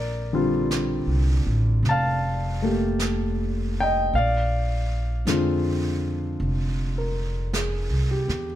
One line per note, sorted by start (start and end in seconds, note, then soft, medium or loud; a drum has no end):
0.00 1.04 A#1 medium
0.00 1.48 A#4 medium
0.00 1.47 D5 medium
0.33 4.13 D3 soft
0.33 4.13 G3 soft
0.33 4.13 C4 soft
0.33 4.14 F4 soft
0.71 brush sweep soft
0.71 snare soft
0.71 hi-hat pedal soft
1.07 1.43 C2 soft
1.46 1.82 A1 medium
1.83 4.08 F1 medium
1.83 brush sweep soft
1.83 snare soft
1.89 2.98 F5 medium
1.89 2.97 A5 medium
2.62 4.13 A3 soft
2.62 4.13 A#3 soft
2.62 4.14 G4 soft
2.99 brush sweep soft
2.99 snare soft
2.99 hi-hat pedal soft
3.80 4.14 D#5 medium
3.80 4.12 G5 medium
4.13 5.23 A#1 medium
4.13 6.37 F5 medium
4.13 brush sweep soft
4.18 6.38 D5 medium
5.25 6.35 F2 medium
5.25 8.55 D3 soft
5.25 8.55 G#3 soft
5.25 8.55 C4 soft
5.25 brush sweep soft
5.25 snare soft
5.25 hi-hat pedal soft
5.30 8.55 F4 soft
6.40 7.87 F1 medium
6.40 brush sweep soft
6.98 7.78 A#4 soft
7.53 8.45 G#4 soft
7.53 brush sweep soft
7.53 snare soft
7.53 hi-hat pedal soft
7.90 8.26 C2 soft
8.11 8.55 G4 soft
8.28 8.55 E2 medium
8.28 snare soft